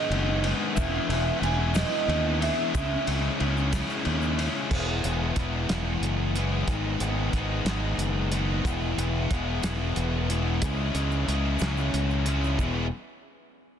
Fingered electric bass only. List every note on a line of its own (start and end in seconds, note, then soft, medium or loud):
0.10 0.52 F#1 medium
0.77 0.98 E1 loud
1.09 1.30 E1 loud
1.41 1.83 E1 medium
2.08 2.49 D#2 medium
2.75 2.95 C#2 loud
3.07 3.28 C#2 medium
3.41 3.81 C#2 medium
4.06 4.47 D#2 medium
4.71 5.01 E1 medium
5.04 5.34 E1 medium
5.36 5.67 E1 medium
5.70 6.00 E1 medium
6.00 6.63 F#1 medium
6.67 6.98 G#1 medium
7.00 7.31 G#1 medium
7.33 7.64 G#1 medium
7.65 7.96 G#1 medium
7.98 8.61 F#1 medium
8.64 8.95 E1 medium
8.97 9.28 E1 medium
9.31 9.61 E1 medium
9.63 9.94 E1 medium
9.96 10.58 E1 medium
10.61 10.92 C#2 medium
10.94 11.25 C#2 medium
11.28 11.58 C#2 medium
11.61 11.91 C#2 medium
11.94 12.55 C#2 medium
12.58 12.89 E1 medium